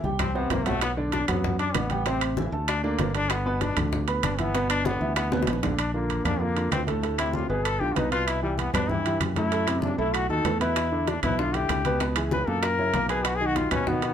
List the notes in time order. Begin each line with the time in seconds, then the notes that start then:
0.04 C2 G3 G4 G5, high bongo, high conga
0.19 C4, high bongo, low conga, high timbale, claves
0.35 C3 B3 C4 C5, high bongo
0.50 B1 A#3, high bongo, low bongo, low conga, high timbale, low timbale
0.66 F#3 A3 F#4 F#5, high bongo, low conga, high timbale
0.81 B3, high bongo, high conga, high timbale, claves
0.97 D3 D4 D5, high conga
1.12 D4, high bongo, high conga, high timbale
1.28 F#2 F#3 B3 F#4 F#5, high bongo, high conga, low conga, high timbale, claves
1.44 high bongo, high conga, low conga
1.59 D4 D5 D6, high bongo, high conga, high timbale
1.75 A1 B3, high bongo, low bongo, high conga, high timbale, low timbale, claves
1.90 G3 G4 G5, high bongo, high conga, high timbale
2.06 C3 C4 C5, high bongo, high conga, high timbale
2.21 high conga, high timbale, claves
2.37 E3 E4 E5, high bongo, high conga
2.52 D2 A3 A4 A5, high bongo, high conga
2.68 D4, high bongo, high conga, high timbale, claves
2.84 D3 A#3 D4 D5, high bongo, high conga
2.99 G1, high bongo, low bongo, high conga, high timbale, low timbale
3.15 D3 D4 D5, high bongo, high conga, high timbale
3.30 B3, high bongo, high conga, high timbale, claves
3.45 B2 B3 B4, high conga
3.61 D4, high bongo, high conga, high timbale
3.77 D2 D3 D4 D5, high bongo, high conga, low conga, high timbale, claves
3.92 high bongo, high conga, low conga
4.08 B3 B4 B5, high bongo, high conga, high timbale
4.23 G1 D4, high bongo, low bongo, high conga, high timbale, claves
4.39 E3 B3 E4 E5, high bongo, high conga, high timbale
4.54 B2 B3 B4, high bongo, high conga, high timbale
4.70 D4, high conga, high timbale, claves
4.85 D3 B3 D4 D5, high bongo, high conga
5.01 D2 E3 E4 E5, high bongo, high conga
5.16 B3, high bongo, high conga, high timbale, claves
5.32 B2 B3 B4, high bongo, high conga
5.42 high bongo, high conga
5.47 A#1, high timbale, low timbale
5.53 low bongo
5.63 D3 D4 D5, low bongo, low conga, high timbale
5.79 D4, high conga, high timbale, claves
5.94 D3 A#3 D4 F4, high conga
6.09 high conga, high timbale
6.25 F2 A#2 A#3 D4 A#4, high conga, low conga, high timbale, claves
6.40 D3 A#3 D4 F4, high conga
6.56 D3 D4 F4, high conga, high timbale
6.71 D2 C4, high conga, high timbale, low timbale, claves
6.87 A2 A3 A4, high conga, high timbale
7.03 A2 A3 A4, high conga, high timbale
7.18 C3 C4 D4 E4, high conga, high timbale, claves
7.33 F4, high conga
7.49 G1 B2 B3 G#4 B4, high conga
7.65 A4, high conga, high timbale, claves
7.80 B1 D3 D4 F4 G4, high conga
7.96 C2 B2 B3 D#4 B4, high conga, high timbale, low timbale
8.11 B2 B3 F4 B4, high conga, high timbale
8.27 E4, high conga, high timbale, claves
8.43 E3 G3 E4 G4, high conga
8.58 B3, high conga, high timbale
8.73 G2 B2 B3 D4 B4, high conga, low conga, high timbale, claves
8.89 E3 E4 G4, high conga, low conga
9.05 E3 E4 G4, high conga, high timbale
9.20 F#2, high conga, high timbale, claves
9.36 A2 A3 E4 A4, high conga, high timbale
9.51 A2 A3 A4, high conga, high timbale
9.67 C3 C4 E4, high conga, high timbale, claves
9.82 D4, high conga
9.98 B1 A2 A3 E4 A4, high conga
10.14 F#4, high conga, high timbale, claves
10.29 D#2 D#3 D#4 F#4 A4, high conga
10.45 E2 A2 A3 A4, high conga, high timbale, low timbale
10.60 B2 B3 E4 B4, high conga, high timbale
10.76 high bongo, high conga, high timbale, claves
10.92 D3 D4 E4, high conga
11.07 D4, high bongo, high conga, high timbale
11.23 B1 B2 B3 E4 B4, high bongo, high conga, low conga, high timbale, claves
11.39 D3 D4 E4 F4, high bongo, high conga
11.54 D3 D4 E4 G4, high bongo, high conga, high timbale
11.69 C#2, high bongo, low bongo, high conga, high timbale, claves
11.85 B2 B3 B4, high bongo, high conga, high timbale
12.00 B2 B3 B4, high bongo, high timbale
12.16 E3 E4 G#4, high timbale, claves
12.31 B4, high bongo, high conga
12.47 F#2 A#2 A#3 A4 A#4, high bongo, high conga
12.63 A#4, high bongo, high conga, high timbale, claves
12.78 C#3 C#4 E4, high bongo, high conga
12.94 B1 A#2 A#3 A#4, high bongo, low bongo, high conga, high timbale
13.09 B2 B3 G#4 B4, high bongo, high conga, high timbale
13.25 F#4, high bongo, high conga, high timbale, claves
13.36 G#4
13.40 D#3 D#4 F#4, high conga
13.46 F#4
13.56 F4, high bongo, high conga, high timbale
13.71 B2 B3 C#4 B4, high bongo, high conga, low conga, high timbale, claves
13.87 D#3 B3 D#4 F#4, high bongo, high conga, low conga
14.02 D#3 D#4 F#4, high bongo, high conga, high timbale